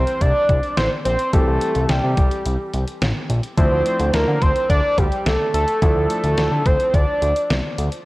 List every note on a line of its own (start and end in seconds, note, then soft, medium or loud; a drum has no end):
0.00 1.29 E3 medium
0.00 1.29 G3 medium
0.00 1.29 C4 medium
0.00 1.29 E4 medium
0.00 0.22 C5 loud
0.07 closed hi-hat medium
0.21 0.32 C2 loud
0.21 0.76 D5 loud
0.21 kick medium
0.21 closed hi-hat medium
0.49 0.60 C2 loud
0.49 kick medium
0.49 closed hi-hat medium
0.63 closed hi-hat soft
0.77 0.89 A1 loud
0.77 0.90 C5 medium
0.77 snare loud
0.77 closed hi-hat medium
1.05 1.17 A#1 medium
1.05 1.31 C5 medium
1.05 closed hi-hat medium
1.19 closed hi-hat soft
1.33 1.45 C2 loud
1.33 3.54 E3 medium
1.33 3.54 G3 medium
1.33 3.54 C4 medium
1.33 3.54 G4 medium
1.33 1.91 A4 loud
1.33 kick loud
1.33 closed hi-hat medium
1.47 1.59 C2 medium
1.61 closed hi-hat medium
1.75 1.87 C2 loud
1.75 closed hi-hat soft
1.89 2.01 C2 loud
1.89 3.02 G4 medium
1.89 snare loud
1.89 closed hi-hat medium
2.04 2.15 C3 medium
2.17 2.29 C2 medium
2.17 kick medium
2.17 closed hi-hat medium
2.31 closed hi-hat medium
2.45 2.57 C2 medium
2.45 closed hi-hat medium
2.73 2.85 C2 loud
2.73 closed hi-hat medium
2.87 closed hi-hat soft
3.02 3.13 A1 medium
3.02 snare loud
3.02 closed hi-hat medium
3.30 3.41 A#1 loud
3.30 closed hi-hat medium
3.43 closed hi-hat soft
3.58 3.69 D2 loud
3.58 5.78 F3 medium
3.58 5.78 A3 medium
3.58 5.78 D4 medium
3.58 5.78 E4 medium
3.58 4.15 C5 loud
3.58 kick loud
3.58 closed hi-hat medium
3.72 3.83 D2 loud
3.86 closed hi-hat medium
4.00 4.11 D2 loud
4.00 closed hi-hat soft
4.14 4.25 D2 loud
4.14 4.43 A#4 loud
4.14 snare loud
4.14 closed hi-hat medium
4.28 4.39 D3 medium
4.42 4.53 D2 loud
4.42 4.69 C5 loud
4.42 kick medium
4.42 closed hi-hat medium
4.56 closed hi-hat medium
4.70 4.81 D2 loud
4.70 4.99 D5 loud
4.70 kick medium
4.70 closed hi-hat medium
4.98 5.09 D2 loud
4.98 5.28 G4 loud
4.98 kick medium
4.98 closed hi-hat medium
5.12 closed hi-hat soft
5.26 5.37 C2 medium
5.26 5.53 A4 medium
5.26 snare loud
5.26 closed hi-hat medium
5.54 5.65 D2 medium
5.54 5.80 A4 medium
5.54 closed hi-hat medium
5.68 closed hi-hat soft
5.82 5.93 D2 loud
5.82 8.02 F3 medium
5.82 8.02 A3 medium
5.82 8.02 D4 medium
5.82 8.02 E4 medium
5.82 6.68 A4 loud
5.82 kick loud
5.82 closed hi-hat medium
5.96 6.07 D2 medium
6.10 closed hi-hat medium
6.24 6.35 D2 medium
6.24 closed hi-hat soft
6.38 6.49 D2 loud
6.38 snare loud
6.38 closed hi-hat medium
6.52 6.63 D3 loud
6.66 6.77 D2 loud
6.66 6.95 C5 medium
6.66 kick medium
6.66 closed hi-hat medium
6.80 closed hi-hat medium
6.94 7.05 D2 loud
6.94 7.50 D5 medium
6.94 kick medium
6.94 closed hi-hat medium
7.22 7.33 D2 loud
7.22 closed hi-hat medium
7.36 closed hi-hat soft
7.50 7.61 C2 medium
7.50 snare loud
7.50 closed hi-hat medium
7.78 7.89 D2 loud
7.78 closed hi-hat medium
7.92 closed hi-hat soft